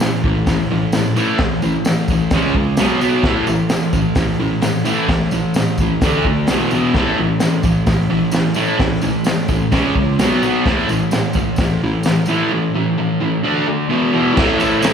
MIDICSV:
0, 0, Header, 1, 3, 480
1, 0, Start_track
1, 0, Key_signature, 3, "major"
1, 0, Tempo, 462963
1, 1446, Time_signature, 4, 2, 24, 8
1, 15483, End_track
2, 0, Start_track
2, 0, Title_t, "Distorted electric guitar"
2, 0, Program_c, 0, 30
2, 12, Note_on_c, 0, 45, 73
2, 15, Note_on_c, 0, 52, 82
2, 228, Note_off_c, 0, 45, 0
2, 230, Note_off_c, 0, 52, 0
2, 253, Note_on_c, 0, 45, 65
2, 262, Note_on_c, 0, 52, 74
2, 468, Note_off_c, 0, 45, 0
2, 472, Note_off_c, 0, 52, 0
2, 504, Note_on_c, 0, 52, 80
2, 505, Note_on_c, 0, 45, 67
2, 713, Note_off_c, 0, 45, 0
2, 713, Note_off_c, 0, 52, 0
2, 740, Note_on_c, 0, 52, 74
2, 745, Note_on_c, 0, 45, 67
2, 950, Note_off_c, 0, 52, 0
2, 953, Note_off_c, 0, 45, 0
2, 979, Note_on_c, 0, 45, 70
2, 982, Note_on_c, 0, 52, 73
2, 1189, Note_off_c, 0, 45, 0
2, 1191, Note_off_c, 0, 52, 0
2, 1205, Note_on_c, 0, 45, 88
2, 1212, Note_on_c, 0, 52, 77
2, 1224, Note_on_c, 0, 57, 93
2, 1431, Note_off_c, 0, 45, 0
2, 1434, Note_off_c, 0, 52, 0
2, 1440, Note_off_c, 0, 57, 0
2, 1453, Note_on_c, 0, 45, 71
2, 1455, Note_on_c, 0, 52, 75
2, 1665, Note_off_c, 0, 45, 0
2, 1666, Note_off_c, 0, 52, 0
2, 1691, Note_on_c, 0, 45, 61
2, 1697, Note_on_c, 0, 52, 70
2, 1904, Note_off_c, 0, 45, 0
2, 1907, Note_off_c, 0, 52, 0
2, 1944, Note_on_c, 0, 45, 72
2, 1945, Note_on_c, 0, 52, 84
2, 2150, Note_off_c, 0, 45, 0
2, 2150, Note_off_c, 0, 52, 0
2, 2184, Note_on_c, 0, 45, 81
2, 2188, Note_on_c, 0, 52, 89
2, 2389, Note_off_c, 0, 45, 0
2, 2392, Note_off_c, 0, 52, 0
2, 2418, Note_on_c, 0, 49, 86
2, 2429, Note_on_c, 0, 56, 103
2, 2441, Note_on_c, 0, 61, 100
2, 2636, Note_off_c, 0, 49, 0
2, 2639, Note_off_c, 0, 56, 0
2, 2647, Note_off_c, 0, 61, 0
2, 2647, Note_on_c, 0, 49, 71
2, 2651, Note_on_c, 0, 56, 83
2, 2860, Note_off_c, 0, 49, 0
2, 2863, Note_off_c, 0, 56, 0
2, 2890, Note_on_c, 0, 47, 94
2, 2897, Note_on_c, 0, 54, 90
2, 2910, Note_on_c, 0, 59, 103
2, 3107, Note_off_c, 0, 47, 0
2, 3115, Note_off_c, 0, 54, 0
2, 3119, Note_on_c, 0, 47, 92
2, 3121, Note_off_c, 0, 59, 0
2, 3135, Note_on_c, 0, 54, 92
2, 3140, Note_on_c, 0, 59, 97
2, 3346, Note_off_c, 0, 47, 0
2, 3354, Note_off_c, 0, 54, 0
2, 3356, Note_off_c, 0, 59, 0
2, 3370, Note_on_c, 0, 45, 87
2, 3376, Note_on_c, 0, 52, 97
2, 3383, Note_on_c, 0, 57, 96
2, 3588, Note_off_c, 0, 45, 0
2, 3594, Note_off_c, 0, 52, 0
2, 3597, Note_off_c, 0, 57, 0
2, 3600, Note_on_c, 0, 45, 61
2, 3605, Note_on_c, 0, 52, 76
2, 3816, Note_off_c, 0, 45, 0
2, 3819, Note_off_c, 0, 52, 0
2, 3851, Note_on_c, 0, 45, 73
2, 3856, Note_on_c, 0, 52, 93
2, 4061, Note_off_c, 0, 45, 0
2, 4064, Note_off_c, 0, 52, 0
2, 4081, Note_on_c, 0, 45, 75
2, 4082, Note_on_c, 0, 52, 81
2, 4296, Note_off_c, 0, 45, 0
2, 4297, Note_off_c, 0, 52, 0
2, 4317, Note_on_c, 0, 45, 75
2, 4324, Note_on_c, 0, 52, 83
2, 4534, Note_off_c, 0, 45, 0
2, 4538, Note_off_c, 0, 52, 0
2, 4557, Note_on_c, 0, 45, 74
2, 4557, Note_on_c, 0, 52, 79
2, 4774, Note_off_c, 0, 45, 0
2, 4774, Note_off_c, 0, 52, 0
2, 4788, Note_on_c, 0, 52, 77
2, 4792, Note_on_c, 0, 45, 71
2, 5010, Note_off_c, 0, 52, 0
2, 5012, Note_off_c, 0, 45, 0
2, 5030, Note_on_c, 0, 45, 92
2, 5037, Note_on_c, 0, 52, 83
2, 5047, Note_on_c, 0, 57, 87
2, 5260, Note_off_c, 0, 45, 0
2, 5264, Note_off_c, 0, 52, 0
2, 5269, Note_off_c, 0, 57, 0
2, 5282, Note_on_c, 0, 52, 82
2, 5284, Note_on_c, 0, 45, 69
2, 5497, Note_off_c, 0, 52, 0
2, 5498, Note_off_c, 0, 45, 0
2, 5520, Note_on_c, 0, 45, 61
2, 5527, Note_on_c, 0, 52, 80
2, 5736, Note_off_c, 0, 45, 0
2, 5739, Note_off_c, 0, 52, 0
2, 5761, Note_on_c, 0, 45, 79
2, 5766, Note_on_c, 0, 52, 79
2, 5977, Note_off_c, 0, 45, 0
2, 5979, Note_off_c, 0, 52, 0
2, 6014, Note_on_c, 0, 45, 70
2, 6020, Note_on_c, 0, 52, 70
2, 6223, Note_off_c, 0, 45, 0
2, 6226, Note_off_c, 0, 52, 0
2, 6249, Note_on_c, 0, 50, 90
2, 6258, Note_on_c, 0, 57, 87
2, 6272, Note_on_c, 0, 62, 92
2, 6470, Note_off_c, 0, 50, 0
2, 6475, Note_off_c, 0, 57, 0
2, 6482, Note_off_c, 0, 62, 0
2, 6496, Note_on_c, 0, 50, 70
2, 6502, Note_on_c, 0, 57, 78
2, 6704, Note_off_c, 0, 50, 0
2, 6707, Note_off_c, 0, 57, 0
2, 6728, Note_on_c, 0, 40, 80
2, 6739, Note_on_c, 0, 47, 88
2, 6748, Note_on_c, 0, 52, 88
2, 6950, Note_off_c, 0, 40, 0
2, 6955, Note_off_c, 0, 47, 0
2, 6960, Note_off_c, 0, 52, 0
2, 6971, Note_on_c, 0, 40, 81
2, 6980, Note_on_c, 0, 47, 97
2, 6982, Note_on_c, 0, 52, 88
2, 7191, Note_off_c, 0, 40, 0
2, 7196, Note_off_c, 0, 47, 0
2, 7197, Note_off_c, 0, 52, 0
2, 7220, Note_on_c, 0, 45, 85
2, 7226, Note_on_c, 0, 52, 84
2, 7231, Note_on_c, 0, 57, 88
2, 7436, Note_off_c, 0, 45, 0
2, 7439, Note_off_c, 0, 52, 0
2, 7442, Note_off_c, 0, 57, 0
2, 7452, Note_on_c, 0, 45, 66
2, 7454, Note_on_c, 0, 52, 65
2, 7662, Note_off_c, 0, 45, 0
2, 7664, Note_off_c, 0, 52, 0
2, 7674, Note_on_c, 0, 45, 76
2, 7683, Note_on_c, 0, 52, 85
2, 7893, Note_off_c, 0, 45, 0
2, 7898, Note_off_c, 0, 52, 0
2, 7923, Note_on_c, 0, 45, 69
2, 7924, Note_on_c, 0, 52, 83
2, 8138, Note_off_c, 0, 45, 0
2, 8139, Note_off_c, 0, 52, 0
2, 8160, Note_on_c, 0, 45, 70
2, 8165, Note_on_c, 0, 52, 80
2, 8377, Note_off_c, 0, 45, 0
2, 8379, Note_off_c, 0, 52, 0
2, 8398, Note_on_c, 0, 45, 62
2, 8408, Note_on_c, 0, 52, 78
2, 8616, Note_off_c, 0, 45, 0
2, 8621, Note_off_c, 0, 52, 0
2, 8634, Note_on_c, 0, 45, 67
2, 8640, Note_on_c, 0, 52, 72
2, 8854, Note_off_c, 0, 45, 0
2, 8857, Note_off_c, 0, 52, 0
2, 8871, Note_on_c, 0, 45, 78
2, 8878, Note_on_c, 0, 52, 98
2, 8883, Note_on_c, 0, 57, 94
2, 9090, Note_off_c, 0, 45, 0
2, 9097, Note_off_c, 0, 52, 0
2, 9103, Note_on_c, 0, 45, 77
2, 9108, Note_off_c, 0, 57, 0
2, 9109, Note_on_c, 0, 52, 77
2, 9329, Note_off_c, 0, 45, 0
2, 9332, Note_off_c, 0, 52, 0
2, 9352, Note_on_c, 0, 45, 66
2, 9359, Note_on_c, 0, 52, 68
2, 9574, Note_off_c, 0, 45, 0
2, 9577, Note_off_c, 0, 52, 0
2, 9600, Note_on_c, 0, 52, 86
2, 9602, Note_on_c, 0, 45, 74
2, 9818, Note_off_c, 0, 52, 0
2, 9819, Note_off_c, 0, 45, 0
2, 9837, Note_on_c, 0, 52, 82
2, 9838, Note_on_c, 0, 45, 83
2, 10057, Note_off_c, 0, 45, 0
2, 10057, Note_off_c, 0, 52, 0
2, 10076, Note_on_c, 0, 49, 93
2, 10091, Note_on_c, 0, 56, 94
2, 10100, Note_on_c, 0, 61, 99
2, 10306, Note_off_c, 0, 49, 0
2, 10313, Note_off_c, 0, 56, 0
2, 10318, Note_off_c, 0, 61, 0
2, 10333, Note_on_c, 0, 49, 78
2, 10334, Note_on_c, 0, 56, 82
2, 10545, Note_off_c, 0, 49, 0
2, 10546, Note_off_c, 0, 56, 0
2, 10568, Note_on_c, 0, 47, 78
2, 10582, Note_on_c, 0, 54, 86
2, 10589, Note_on_c, 0, 59, 98
2, 10792, Note_off_c, 0, 47, 0
2, 10799, Note_off_c, 0, 54, 0
2, 10803, Note_off_c, 0, 59, 0
2, 10805, Note_on_c, 0, 47, 92
2, 10817, Note_on_c, 0, 54, 92
2, 10827, Note_on_c, 0, 59, 98
2, 11031, Note_off_c, 0, 47, 0
2, 11037, Note_off_c, 0, 54, 0
2, 11042, Note_off_c, 0, 59, 0
2, 11052, Note_on_c, 0, 45, 89
2, 11060, Note_on_c, 0, 52, 93
2, 11067, Note_on_c, 0, 57, 89
2, 11275, Note_off_c, 0, 45, 0
2, 11279, Note_off_c, 0, 52, 0
2, 11283, Note_off_c, 0, 57, 0
2, 11304, Note_on_c, 0, 45, 67
2, 11305, Note_on_c, 0, 52, 73
2, 11512, Note_off_c, 0, 45, 0
2, 11512, Note_off_c, 0, 52, 0
2, 11534, Note_on_c, 0, 45, 80
2, 11536, Note_on_c, 0, 52, 84
2, 11747, Note_off_c, 0, 45, 0
2, 11748, Note_off_c, 0, 52, 0
2, 11772, Note_on_c, 0, 45, 74
2, 11781, Note_on_c, 0, 52, 90
2, 11987, Note_off_c, 0, 45, 0
2, 11991, Note_off_c, 0, 52, 0
2, 12034, Note_on_c, 0, 45, 72
2, 12045, Note_on_c, 0, 52, 84
2, 12238, Note_off_c, 0, 45, 0
2, 12243, Note_off_c, 0, 52, 0
2, 12271, Note_on_c, 0, 45, 67
2, 12271, Note_on_c, 0, 52, 81
2, 12477, Note_off_c, 0, 45, 0
2, 12477, Note_off_c, 0, 52, 0
2, 12498, Note_on_c, 0, 45, 73
2, 12500, Note_on_c, 0, 52, 80
2, 12711, Note_off_c, 0, 45, 0
2, 12712, Note_off_c, 0, 52, 0
2, 12733, Note_on_c, 0, 45, 79
2, 12739, Note_on_c, 0, 52, 88
2, 12753, Note_on_c, 0, 57, 79
2, 12959, Note_off_c, 0, 45, 0
2, 12961, Note_off_c, 0, 52, 0
2, 12968, Note_off_c, 0, 57, 0
2, 12984, Note_on_c, 0, 45, 63
2, 12986, Note_on_c, 0, 52, 75
2, 13195, Note_off_c, 0, 45, 0
2, 13196, Note_off_c, 0, 52, 0
2, 13215, Note_on_c, 0, 45, 60
2, 13225, Note_on_c, 0, 52, 78
2, 13431, Note_off_c, 0, 45, 0
2, 13435, Note_off_c, 0, 52, 0
2, 13452, Note_on_c, 0, 45, 77
2, 13457, Note_on_c, 0, 52, 86
2, 13670, Note_off_c, 0, 45, 0
2, 13672, Note_off_c, 0, 52, 0
2, 13693, Note_on_c, 0, 45, 72
2, 13696, Note_on_c, 0, 52, 80
2, 13910, Note_off_c, 0, 45, 0
2, 13912, Note_off_c, 0, 52, 0
2, 13929, Note_on_c, 0, 50, 84
2, 13937, Note_on_c, 0, 57, 94
2, 13947, Note_on_c, 0, 62, 101
2, 14159, Note_off_c, 0, 50, 0
2, 14163, Note_off_c, 0, 57, 0
2, 14167, Note_off_c, 0, 62, 0
2, 14180, Note_on_c, 0, 50, 65
2, 14185, Note_on_c, 0, 57, 70
2, 14395, Note_off_c, 0, 50, 0
2, 14397, Note_off_c, 0, 57, 0
2, 14405, Note_on_c, 0, 40, 74
2, 14414, Note_on_c, 0, 47, 82
2, 14425, Note_on_c, 0, 52, 106
2, 14637, Note_off_c, 0, 40, 0
2, 14642, Note_off_c, 0, 47, 0
2, 14647, Note_off_c, 0, 52, 0
2, 14648, Note_on_c, 0, 40, 74
2, 14654, Note_on_c, 0, 47, 75
2, 14665, Note_on_c, 0, 52, 97
2, 14872, Note_off_c, 0, 47, 0
2, 14876, Note_on_c, 0, 45, 91
2, 14879, Note_off_c, 0, 40, 0
2, 14888, Note_off_c, 0, 52, 0
2, 14905, Note_on_c, 0, 52, 94
2, 14920, Note_on_c, 0, 57, 93
2, 15117, Note_off_c, 0, 57, 0
2, 15121, Note_on_c, 0, 57, 71
2, 15162, Note_off_c, 0, 52, 0
2, 15166, Note_on_c, 0, 52, 63
2, 15349, Note_off_c, 0, 45, 0
2, 15353, Note_on_c, 0, 45, 101
2, 15372, Note_off_c, 0, 52, 0
2, 15376, Note_on_c, 0, 52, 98
2, 15394, Note_off_c, 0, 57, 0
2, 15399, Note_on_c, 0, 57, 106
2, 15483, Note_off_c, 0, 45, 0
2, 15483, Note_off_c, 0, 52, 0
2, 15483, Note_off_c, 0, 57, 0
2, 15483, End_track
3, 0, Start_track
3, 0, Title_t, "Drums"
3, 2, Note_on_c, 9, 54, 97
3, 5, Note_on_c, 9, 46, 60
3, 13, Note_on_c, 9, 38, 114
3, 106, Note_off_c, 9, 54, 0
3, 108, Note_off_c, 9, 46, 0
3, 117, Note_off_c, 9, 38, 0
3, 249, Note_on_c, 9, 36, 85
3, 352, Note_off_c, 9, 36, 0
3, 480, Note_on_c, 9, 46, 62
3, 487, Note_on_c, 9, 36, 110
3, 488, Note_on_c, 9, 54, 69
3, 489, Note_on_c, 9, 38, 118
3, 584, Note_off_c, 9, 46, 0
3, 590, Note_off_c, 9, 36, 0
3, 591, Note_off_c, 9, 54, 0
3, 592, Note_off_c, 9, 38, 0
3, 957, Note_on_c, 9, 46, 63
3, 959, Note_on_c, 9, 54, 89
3, 966, Note_on_c, 9, 38, 125
3, 1061, Note_off_c, 9, 46, 0
3, 1062, Note_off_c, 9, 54, 0
3, 1069, Note_off_c, 9, 38, 0
3, 1208, Note_on_c, 9, 54, 72
3, 1312, Note_off_c, 9, 54, 0
3, 1431, Note_on_c, 9, 46, 55
3, 1439, Note_on_c, 9, 38, 114
3, 1442, Note_on_c, 9, 36, 114
3, 1534, Note_off_c, 9, 46, 0
3, 1543, Note_off_c, 9, 38, 0
3, 1546, Note_off_c, 9, 36, 0
3, 1681, Note_on_c, 9, 54, 61
3, 1785, Note_off_c, 9, 54, 0
3, 1915, Note_on_c, 9, 54, 90
3, 1919, Note_on_c, 9, 46, 65
3, 1928, Note_on_c, 9, 38, 124
3, 2019, Note_off_c, 9, 54, 0
3, 2023, Note_off_c, 9, 46, 0
3, 2031, Note_off_c, 9, 38, 0
3, 2156, Note_on_c, 9, 54, 66
3, 2161, Note_on_c, 9, 36, 86
3, 2259, Note_off_c, 9, 54, 0
3, 2265, Note_off_c, 9, 36, 0
3, 2388, Note_on_c, 9, 46, 58
3, 2393, Note_on_c, 9, 54, 66
3, 2397, Note_on_c, 9, 38, 117
3, 2399, Note_on_c, 9, 36, 105
3, 2492, Note_off_c, 9, 46, 0
3, 2497, Note_off_c, 9, 54, 0
3, 2500, Note_off_c, 9, 38, 0
3, 2503, Note_off_c, 9, 36, 0
3, 2639, Note_on_c, 9, 36, 80
3, 2742, Note_off_c, 9, 36, 0
3, 2869, Note_on_c, 9, 46, 61
3, 2871, Note_on_c, 9, 54, 97
3, 2877, Note_on_c, 9, 38, 117
3, 2972, Note_off_c, 9, 46, 0
3, 2974, Note_off_c, 9, 54, 0
3, 2980, Note_off_c, 9, 38, 0
3, 3123, Note_on_c, 9, 54, 78
3, 3227, Note_off_c, 9, 54, 0
3, 3351, Note_on_c, 9, 46, 44
3, 3353, Note_on_c, 9, 36, 96
3, 3359, Note_on_c, 9, 38, 102
3, 3455, Note_off_c, 9, 46, 0
3, 3457, Note_off_c, 9, 36, 0
3, 3463, Note_off_c, 9, 38, 0
3, 3597, Note_on_c, 9, 54, 71
3, 3700, Note_off_c, 9, 54, 0
3, 3826, Note_on_c, 9, 46, 54
3, 3833, Note_on_c, 9, 54, 94
3, 3835, Note_on_c, 9, 38, 115
3, 3930, Note_off_c, 9, 46, 0
3, 3937, Note_off_c, 9, 54, 0
3, 3938, Note_off_c, 9, 38, 0
3, 4074, Note_on_c, 9, 36, 75
3, 4074, Note_on_c, 9, 54, 69
3, 4177, Note_off_c, 9, 54, 0
3, 4178, Note_off_c, 9, 36, 0
3, 4303, Note_on_c, 9, 46, 63
3, 4311, Note_on_c, 9, 36, 105
3, 4312, Note_on_c, 9, 38, 113
3, 4317, Note_on_c, 9, 54, 70
3, 4407, Note_off_c, 9, 46, 0
3, 4415, Note_off_c, 9, 36, 0
3, 4415, Note_off_c, 9, 38, 0
3, 4420, Note_off_c, 9, 54, 0
3, 4786, Note_on_c, 9, 46, 64
3, 4794, Note_on_c, 9, 38, 122
3, 4797, Note_on_c, 9, 54, 90
3, 4890, Note_off_c, 9, 46, 0
3, 4898, Note_off_c, 9, 38, 0
3, 4901, Note_off_c, 9, 54, 0
3, 5032, Note_on_c, 9, 54, 82
3, 5135, Note_off_c, 9, 54, 0
3, 5273, Note_on_c, 9, 36, 90
3, 5273, Note_on_c, 9, 46, 49
3, 5278, Note_on_c, 9, 54, 28
3, 5281, Note_on_c, 9, 38, 97
3, 5377, Note_off_c, 9, 36, 0
3, 5377, Note_off_c, 9, 46, 0
3, 5381, Note_off_c, 9, 54, 0
3, 5385, Note_off_c, 9, 38, 0
3, 5507, Note_on_c, 9, 54, 69
3, 5611, Note_off_c, 9, 54, 0
3, 5744, Note_on_c, 9, 54, 86
3, 5760, Note_on_c, 9, 46, 61
3, 5768, Note_on_c, 9, 38, 118
3, 5848, Note_off_c, 9, 54, 0
3, 5863, Note_off_c, 9, 46, 0
3, 5872, Note_off_c, 9, 38, 0
3, 5990, Note_on_c, 9, 54, 76
3, 5996, Note_on_c, 9, 36, 78
3, 6094, Note_off_c, 9, 54, 0
3, 6100, Note_off_c, 9, 36, 0
3, 6231, Note_on_c, 9, 46, 54
3, 6238, Note_on_c, 9, 36, 112
3, 6240, Note_on_c, 9, 38, 105
3, 6241, Note_on_c, 9, 54, 70
3, 6335, Note_off_c, 9, 46, 0
3, 6342, Note_off_c, 9, 36, 0
3, 6343, Note_off_c, 9, 38, 0
3, 6345, Note_off_c, 9, 54, 0
3, 6477, Note_on_c, 9, 36, 81
3, 6581, Note_off_c, 9, 36, 0
3, 6707, Note_on_c, 9, 46, 66
3, 6716, Note_on_c, 9, 38, 117
3, 6719, Note_on_c, 9, 54, 88
3, 6811, Note_off_c, 9, 46, 0
3, 6819, Note_off_c, 9, 38, 0
3, 6822, Note_off_c, 9, 54, 0
3, 6955, Note_on_c, 9, 54, 84
3, 7058, Note_off_c, 9, 54, 0
3, 7196, Note_on_c, 9, 46, 44
3, 7200, Note_on_c, 9, 36, 97
3, 7204, Note_on_c, 9, 38, 103
3, 7300, Note_off_c, 9, 46, 0
3, 7304, Note_off_c, 9, 36, 0
3, 7308, Note_off_c, 9, 38, 0
3, 7667, Note_on_c, 9, 46, 55
3, 7675, Note_on_c, 9, 38, 111
3, 7677, Note_on_c, 9, 54, 90
3, 7771, Note_off_c, 9, 46, 0
3, 7779, Note_off_c, 9, 38, 0
3, 7780, Note_off_c, 9, 54, 0
3, 7913, Note_on_c, 9, 54, 68
3, 7917, Note_on_c, 9, 36, 84
3, 8016, Note_off_c, 9, 54, 0
3, 8021, Note_off_c, 9, 36, 0
3, 8153, Note_on_c, 9, 46, 59
3, 8155, Note_on_c, 9, 54, 75
3, 8159, Note_on_c, 9, 36, 109
3, 8162, Note_on_c, 9, 38, 98
3, 8257, Note_off_c, 9, 46, 0
3, 8259, Note_off_c, 9, 54, 0
3, 8263, Note_off_c, 9, 36, 0
3, 8265, Note_off_c, 9, 38, 0
3, 8620, Note_on_c, 9, 54, 95
3, 8644, Note_on_c, 9, 46, 57
3, 8653, Note_on_c, 9, 38, 115
3, 8724, Note_off_c, 9, 54, 0
3, 8748, Note_off_c, 9, 46, 0
3, 8756, Note_off_c, 9, 38, 0
3, 8858, Note_on_c, 9, 54, 79
3, 8961, Note_off_c, 9, 54, 0
3, 9117, Note_on_c, 9, 46, 60
3, 9119, Note_on_c, 9, 36, 93
3, 9125, Note_on_c, 9, 38, 114
3, 9220, Note_off_c, 9, 46, 0
3, 9223, Note_off_c, 9, 36, 0
3, 9229, Note_off_c, 9, 38, 0
3, 9347, Note_on_c, 9, 54, 63
3, 9451, Note_off_c, 9, 54, 0
3, 9584, Note_on_c, 9, 54, 91
3, 9600, Note_on_c, 9, 46, 63
3, 9608, Note_on_c, 9, 38, 112
3, 9687, Note_off_c, 9, 54, 0
3, 9704, Note_off_c, 9, 46, 0
3, 9712, Note_off_c, 9, 38, 0
3, 9832, Note_on_c, 9, 54, 63
3, 9838, Note_on_c, 9, 36, 76
3, 9936, Note_off_c, 9, 54, 0
3, 9941, Note_off_c, 9, 36, 0
3, 10075, Note_on_c, 9, 46, 59
3, 10078, Note_on_c, 9, 54, 64
3, 10079, Note_on_c, 9, 36, 106
3, 10083, Note_on_c, 9, 38, 106
3, 10178, Note_off_c, 9, 46, 0
3, 10182, Note_off_c, 9, 54, 0
3, 10183, Note_off_c, 9, 36, 0
3, 10187, Note_off_c, 9, 38, 0
3, 10321, Note_on_c, 9, 36, 82
3, 10425, Note_off_c, 9, 36, 0
3, 10563, Note_on_c, 9, 46, 63
3, 10568, Note_on_c, 9, 54, 103
3, 10571, Note_on_c, 9, 38, 118
3, 10667, Note_off_c, 9, 46, 0
3, 10672, Note_off_c, 9, 54, 0
3, 10675, Note_off_c, 9, 38, 0
3, 10812, Note_on_c, 9, 54, 83
3, 10916, Note_off_c, 9, 54, 0
3, 11049, Note_on_c, 9, 36, 110
3, 11050, Note_on_c, 9, 46, 51
3, 11058, Note_on_c, 9, 38, 106
3, 11153, Note_off_c, 9, 36, 0
3, 11154, Note_off_c, 9, 46, 0
3, 11162, Note_off_c, 9, 38, 0
3, 11292, Note_on_c, 9, 54, 76
3, 11396, Note_off_c, 9, 54, 0
3, 11521, Note_on_c, 9, 54, 86
3, 11533, Note_on_c, 9, 46, 59
3, 11541, Note_on_c, 9, 38, 125
3, 11624, Note_off_c, 9, 54, 0
3, 11637, Note_off_c, 9, 46, 0
3, 11645, Note_off_c, 9, 38, 0
3, 11749, Note_on_c, 9, 54, 76
3, 11769, Note_on_c, 9, 36, 73
3, 11853, Note_off_c, 9, 54, 0
3, 11873, Note_off_c, 9, 36, 0
3, 11988, Note_on_c, 9, 54, 70
3, 12003, Note_on_c, 9, 46, 55
3, 12009, Note_on_c, 9, 36, 111
3, 12012, Note_on_c, 9, 38, 123
3, 12092, Note_off_c, 9, 54, 0
3, 12107, Note_off_c, 9, 46, 0
3, 12113, Note_off_c, 9, 36, 0
3, 12115, Note_off_c, 9, 38, 0
3, 12476, Note_on_c, 9, 54, 85
3, 12495, Note_on_c, 9, 46, 58
3, 12503, Note_on_c, 9, 38, 120
3, 12580, Note_off_c, 9, 54, 0
3, 12598, Note_off_c, 9, 46, 0
3, 12607, Note_off_c, 9, 38, 0
3, 12708, Note_on_c, 9, 54, 80
3, 12812, Note_off_c, 9, 54, 0
3, 14898, Note_on_c, 9, 49, 106
3, 14902, Note_on_c, 9, 36, 102
3, 14907, Note_on_c, 9, 38, 103
3, 15002, Note_off_c, 9, 49, 0
3, 15006, Note_off_c, 9, 36, 0
3, 15010, Note_off_c, 9, 38, 0
3, 15136, Note_on_c, 9, 54, 63
3, 15145, Note_on_c, 9, 51, 82
3, 15240, Note_off_c, 9, 54, 0
3, 15249, Note_off_c, 9, 51, 0
3, 15256, Note_on_c, 9, 54, 25
3, 15360, Note_off_c, 9, 54, 0
3, 15368, Note_on_c, 9, 54, 90
3, 15386, Note_on_c, 9, 51, 108
3, 15395, Note_on_c, 9, 38, 124
3, 15472, Note_off_c, 9, 54, 0
3, 15483, Note_off_c, 9, 38, 0
3, 15483, Note_off_c, 9, 51, 0
3, 15483, End_track
0, 0, End_of_file